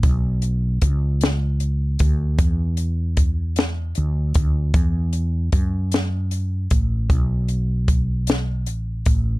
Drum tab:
HH |xxxxxx|xxxxxx|xxxxxx|xxxxxx|
SD |---o--|---o--|---o--|---o--|
BD |o-o--o|o-o--o|o-o--o|o-o--o|